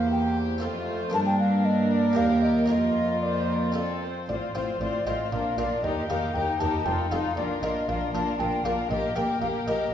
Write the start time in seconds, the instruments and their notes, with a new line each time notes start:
Already playing: harpsichord E2 C4 G4 A#4, cello section E2, viola section A#3, violin section G4 C5, flute F5
0.12 flute G5
0.58 harpsichord C4 F4 A4
0.62 cello section F2, harpsichord F2, viola section A3, violin section F4
1.10 harpsichord A#3 D4 A#4, violin section A#4
1.14 cello section G2, harpsichord G2, viola section A#3, violin section D4, flute A5
1.26 flute G5
1.40 flute F5
1.65 flute D#5
1.92 flute D5
2.13 harpsichord A#3 G4 A#4, flute F5
2.17 cello section D#2, harpsichord D#2, violin section G4
2.43 flute D#5
2.66 harpsichord A#3 F4 A#4, flute D#5
2.70 cello section F2, harpsichord F2, violin section F4
3.23 violin section C5, flute D5
3.50 violin section A#4
3.72 harpsichord C4 F4 A4, viola section C4
3.77 violin section A4
4.03 violin section C5
4.29 double bass section A1, cello section A2, harpsichord A2, viola section C4, violin section F4 C5, flute D5
4.54 double bass section A1, cello section A2, harpsichord A2 C4 F4 C5, viola section C4, violin section F4 C5, flute C5
4.80 double bass section A1, cello section A2, harpsichord A2, viola section C4, violin section F4 C5, flute D5
5.05 double bass section A1, cello section A2, harpsichord A2 C4 F4 C5, viola section C4, violin section F4 C5, flute D#5
5.31 double bass section A#1, cello section A#2, harpsichord A#2, viola section D4, violin section F4 A#4, flute F5
5.57 double bass section A#1, cello section A#2, harpsichord A#2 D4 F4 A#4, viola section D4, violin section F4 A#4, flute D5
5.83 cello section D#2, double bass section D#2, harpsichord D#2, viola section D#4, violin section G4 A#4, flute D#5
6.09 cello section D#2, double bass section D#2, harpsichord D#2 D#4 G4 A#4, viola section D#4, violin section G4 A#4, flute F5
6.34 double bass section D#2, cello section D#2, harpsichord D#2, viola section D#4, violin section G4 A#4, flute G5
6.60 cello section D#2, double bass section D#2, harpsichord D#2 D#4 G4 A#4, viola section D#4, violin section G4 A#4, flute A5
6.85 double bass section F1, cello section F2, harpsichord F2, viola section D#4, violin section F4 A4, flute G5
7.11 double bass section F1, cello section F2, harpsichord F2 D#4 F4 A4, viola section D#4, violin section F4 A4, flute F5
7.36 double bass section A#1, cello section A#2, harpsichord A#2, viola section D4, violin section F4 A#4, flute D5
7.62 double bass section A#1, cello section A#2, harpsichord A#2 D4 F4 A#4, viola section D4, violin section F4 A#4, flute D#5
7.87 double bass section A#1, cello section A#2, harpsichord A#2, viola section D4, violin section F4 A#4, flute F5
8.13 double bass section A#1, cello section A#2, harpsichord A#2 D4 F4 A#4, viola section D4, violin section F4 A#4, flute A5
8.39 double bass section A#1, cello section A#2, harpsichord A#2, viola section D4, violin section F4 A#4, flute G5
8.64 double bass section A#1, cello section A#2, harpsichord A#2 D4 F4 A#4, viola section D4, violin section F4 A#4, flute F5
8.90 double bass section A#1, cello section A#2, harpsichord A#2, viola section A#3, violin section G4 A#4, flute D#5
9.15 double bass section A#1, cello section A#2, harpsichord A#2 A#3 G4 A#4, viola section A#3, violin section G4 A#4, flute G5
9.40 double bass section A#1, cello section A#2, harpsichord A#2, viola section A#3, violin section G4 A#4, flute F5
9.66 double bass section A#1, cello section A#2, harpsichord A#2 A#3 G4 A#4, viola section A#3, violin section G4 A#4, flute D#5